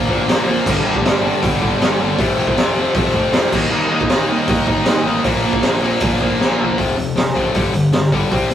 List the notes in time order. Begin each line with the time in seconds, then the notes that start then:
0.06 A#1 A#2 D3 F3 A#3 D4, kick
0.26 A#1 A#2 D3 F3 A#3 D4, snare, open hi-hat
0.45 A#1 A#2 D3 F3 A#3 D4
0.64 G1 G2 D3 G3 A#3 D4, kick, crash
0.84 G1 G2 D3 G3 A#3 D4
0.95 kick
1.03 G1 G2 D3 G3 A#3 D4, snare, open hi-hat
1.24 G2 D3 G3 A#3 D4
1.43 G1 G2 D3 G3 A#3 D4, kick, open hi-hat
1.61 G1 G2 D3 G3 A#3 D4, kick
1.80 G1 G2 D3 G3 A#3 D4, snare, open hi-hat
1.99 G1 G2 D3 G3 A#3 D4
2.18 F1 F2 C3 F3 A3 C4, kick, open hi-hat
2.37 F1 F2 C3 F3 A3 C4
2.47 kick
2.56 F1 F2 C3 F3 A3 C4, snare, open hi-hat
2.75 F2 C3 F3 A3 C4
2.92 F1 F2 C3 F3 A3 C4, kick, open hi-hat
3.12 F1 F2 C3 F3 A3 C4, kick
3.31 F1 F2 C3 F3 A3 C4, snare, open hi-hat
3.51 D#2 D#3 G3 A#3 D#4, kick, crash
3.70 D#2 D#3 G3 A#3 D#4
3.89 D#2 D#3 G3 A#3 D#4
4.01 kick
4.07 D#2 D#3 G3 A#3 D#4, snare, open hi-hat
4.26 D#3 G3 A#3 D#4
4.47 D#2 D#3 G3 A#3 D#4, kick, open hi-hat
4.66 D#2 D#3 G3 A#3 D#4, kick
4.85 D#2 D#3 G3 A#3 D#4, snare, open hi-hat
5.04 A1 D#3 G3 A#3 D#4
5.23 A#1 A#2 D3 F3 A#3 D4, kick, open hi-hat
5.42 A#1 A#2 D3 F3 A#3 D4
5.53 kick
5.62 A#1 A#2 D3 F3 A#3 D4, snare, open hi-hat
5.82 A#2 D3 F3 A#3 D4
6.00 A#1 A#2 D3 F3, kick, open hi-hat
6.04 A#3 D4
6.21 A#1 A#2 D3 F3 A#3 D4, kick
6.39 A#1 A#2 D3 F3 A#3 D4, snare
6.58 A#1 A#2 D3 F3 A#3 D4, floor tom
6.77 F1 F2 C3 F3, kick, open hi-hat
6.97 F2 C3, open hi-hat
7.16 A#1 F2 C3, snare, open hi-hat
7.34 A1 F2 C3 F3, kick, open hi-hat
7.54 G1 G2 D3 G3, kick, open hi-hat
7.73 G1 G2 D3, open hi-hat
7.93 G1 G2 D3, snare, open hi-hat
8.12 G2 D3 G3, kick, open hi-hat
8.31 C2 C3 G3 C4, kick, open hi-hat
8.50 G1 C3, open hi-hat